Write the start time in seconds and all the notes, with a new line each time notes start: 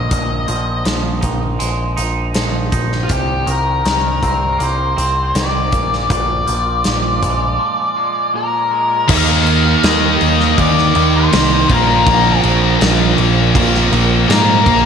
Already playing: A#3 D#5
0.10 A#1 A#2, kick, closed hi-hat
0.48 A#1 F3, closed hi-hat
0.85 A#1 F3, snare, closed hi-hat
1.21 A#1 D#4, kick, closed hi-hat
1.59 A#1 G#3, closed hi-hat
1.97 A#1 D#4, closed hi-hat
2.34 A#1 F3, snare, closed hi-hat
2.72 A#1 D#4, kick, closed hi-hat
2.92 snare
3.03 F4
3.09 C2 C3 G4, kick, closed hi-hat
3.47 C2 D#3 A#4, closed hi-hat
3.85 C2 D#3, snare, closed hi-hat
4.23 C2 C4 A#4, kick, closed hi-hat
4.59 C2 A#3 C5, closed hi-hat
4.97 C2 C4, closed hi-hat
5.35 C2 D#3 D5, snare, closed hi-hat
5.71 A#1 A#2, kick, closed hi-hat
5.93 snare
6.09 A#1 A#2 D5, kick, closed hi-hat
6.47 A#1 F3, closed hi-hat
6.84 A#1 A#2, snare, closed hi-hat
7.22 A#1 G#3, kick, closed hi-hat
7.59 F3
7.97 G#3
8.34 A#2 A#4
8.71 G#3
9.08 D#2 D#3 A#3 D#4 G4 A#4 F5, kick, crash
9.46 crash
9.83 D#2 D#5, snare, crash
10.21 D#2, crash
10.40 snare
10.58 D#2 D5, kick, crash
10.78 snare
10.95 D#2 D#3 A#3 D#4, crash
11.16 C5
11.33 C2 D#3 A#3 D#4, snare, crash
11.70 A#1 A#2 F3 C4 F4 A#4, kick, crash
11.74 A#3
12.06 A#1, kick, crash
12.43 A#1, crash
12.81 A#1, snare, crash
13.18 A#1, crash
13.55 A#1 A#2 F3 A#3, kick, crash
13.75 snare
13.92 A#1 F3 A#3, crash
13.97 A#2
14.28 G#2 A#2 F3 A#3 A#4, snare, crash
14.66 A#1, kick, crash